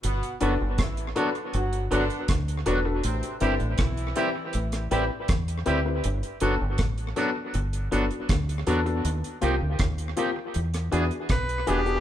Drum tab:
HH |xxx-xxxxxxxxxxx-|xxxxxxx-xxx-xxx-|xxx-xxx-xxxxxxxx|xxx-xxx-xxxxxxxx|
SD |----r-------r---|----r----r--r---|----r-------r---|----r----r--r---|
BD |----o-------o---|----o-------o---|----o-------o---|----o-------o---|